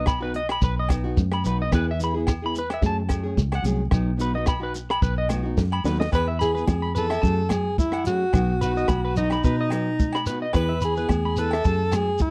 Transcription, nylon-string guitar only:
Already playing: B3
0.21 B3 D#4 F#4
0.88 B3 D#4, muted nylon-string guitar stroke
1.04 B3 D#4 F#4
1.43 F#3 B3 D#4 F#4
1.72 E3 B3 E4 G#4
2.00 E3 B3 E4 G#4
2.14 E4 G#4
2.18 B3
2.42 B3 E4 G#4
2.82 F#3 A3 C#4 G#4
3.08 F#3 A3 C#4 G#4
3.23 A3 C#4 G#4
3.62 F#3 A3 C#4 G#4
3.92 F#3 B3 D#4, muted nylon-string guitar stroke
4.16 F#3 B3 D#4 F#4
4.34 B3 D#4 F#4
4.60 D#4 F#4
5.29 F#3 B3 D#4 F#4
5.43 B3 D#4 F#4
5.85 F#3 B3 D#4 F#4
6.11 E3 E4 G#4, muted nylon-string guitar stroke
6.39 E3 B3 E4 G#4
6.55 B3 E4 G#4
6.95 E3 B3 E4 G#4
7.23 F#3 A3 G#4, muted nylon-string guitar stroke
7.49 F#3 A3 C#4 G#4
8.04 F#3 A3 C#4 G#4
8.34 F#3 B3 D#4 F#4
8.61 F#3 B3 D#4 F#4
8.76 B3 D#4 F#4
9.15 F#3 B3 D#4 F#4
9.69 F#3 B3 D#4
10.26 B3 D#4 F#4, muted nylon-string guitar stroke
10.54 E3 B3 E4 G#4
10.81 E3 E4 G#4
10.96 B3 E4 G#4
11.36 E3 B3 E4 G#4
11.64 F#3 A3 C#4 G#4
11.91 F#3 A3 C#4 G#4

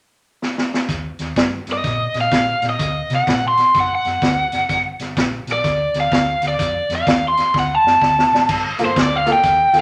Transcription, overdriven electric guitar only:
1.73 D#5
2.21 F5
2.69 D#5
3.15 F#5
3.48 C6
3.80 F#5
3.95 F#5
5.53 D5
6.00 F5
6.48 D5
6.95 F5
7.28 C6
7.59 F#5
7.75 A5
8.85 C5
9.01 D5
9.16 F5
9.32 G5

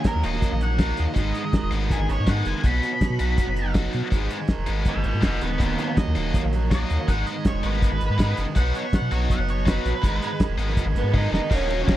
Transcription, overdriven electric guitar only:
Already playing: D#2 F#3
0.05 D#3
0.23 A#3
0.42 F#3
0.61 A#3
0.79 D#3
0.98 F#3
1.16 G#2
1.35 G#3
1.53 D#3
1.73 B3
1.92 G#3
2.11 B3
2.29 D#3
2.48 G#3
2.66 B2
2.82 B3
3.01 F#3
3.19 D#4
3.40 B3
3.57 D#4
3.76 F#3
3.94 B3
4.13 G#2
4.31 G#3
4.50 D#3
4.69 B3
4.86 G#3
5.05 B3
5.23 D#3
5.42 G#3
5.60 D#2
5.78 F#3
5.97 D#3
6.16 A#3
6.34 F#3
6.54 A#3
6.71 D#3
6.90 F#3
7.09 G#2
7.27 G#3
7.44 D#3
7.64 B3
7.82 G#3
8.01 B3
8.20 D#3
8.39 G#3
8.57 B2
8.76 B3
8.95 F#3
9.12 D#4
9.31 B3
9.48 D#4
9.67 F#3
9.86 B3
10.04 G#2
10.23 G#3
10.40 D#3
10.59 B3
10.78 G#3
10.94 B3
11.14 D#3
11.31 G#3
11.49 D#3 F#3 A#3 D#4
11.69 muted overdriven electric guitar stroke
11.87 muted overdriven electric guitar stroke

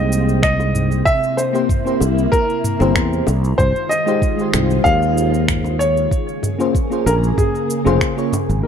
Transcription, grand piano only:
Already playing: D#5
0.43 D#5
1.05 E5
1.37 C5
2.32 A#4
3.58 C5
3.89 D#5
4.84 F5
5.79 C#5
7.06 A#4
7.38 G#4
8.63 A#4

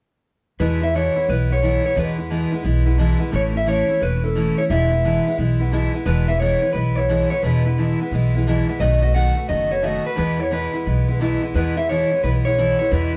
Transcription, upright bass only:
0.60 E2
1.29 B1
1.96 E2
2.65 B1
3.33 A1
4.02 E1
4.70 E1
5.38 B1
6.06 E1
6.74 B1
7.43 E1
8.11 B1
8.80 B1
9.49 F#1
10.18 E2
10.87 B1
11.54 E2
12.23 B1
12.92 E2

